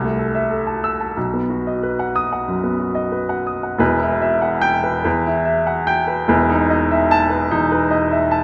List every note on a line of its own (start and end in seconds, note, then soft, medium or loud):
0.00 1.13 C2 medium
0.00 0.28 A3 medium
0.19 0.44 A4 soft
0.35 0.60 E5 medium
0.50 0.76 A4 medium
0.67 0.93 A5 medium
0.84 1.10 E6 medium
1.00 1.16 A5 medium
1.17 2.44 B1 medium
1.33 1.59 B3 soft
1.50 1.76 F#4 soft
1.67 1.92 D#5 medium
1.83 2.09 B4 medium
1.99 2.25 F#5 medium
2.15 2.41 D#6 medium
2.32 2.58 F#5 medium
2.48 2.73 F#2 medium
2.63 2.90 B3 soft
2.80 3.06 F#4 soft
2.95 3.22 D#5 medium
3.12 3.39 B4 medium
3.29 3.57 F#5 medium
3.47 3.73 D#6 medium
3.63 3.80 F#5 soft
3.78 5.01 E1 medium
3.78 5.01 E2 medium
3.78 4.14 B4 medium
4.00 4.34 E4 medium
4.22 4.55 E5 medium
4.42 4.63 F#5 medium
4.61 4.96 G5 medium
4.83 5.03 B4 medium
5.04 6.25 E2 medium
5.04 5.38 B4 medium
5.26 5.59 E4 medium
5.45 5.79 E5 medium
5.67 5.88 F#5 medium
5.87 6.20 G5 medium
6.07 6.27 B4 medium
6.28 7.47 E1 medium
6.28 7.48 E2 medium
6.28 6.62 B4 medium
6.49 6.82 D#4 medium
6.70 7.03 D#5 medium
6.91 7.11 E5 medium
7.11 7.44 A5 medium
7.30 7.63 B4 medium
7.51 8.44 E2 medium
7.51 7.84 D#4 medium
7.72 8.04 B4 medium
7.91 8.23 D#5 medium
8.11 8.32 E5 medium
8.31 8.44 A5 medium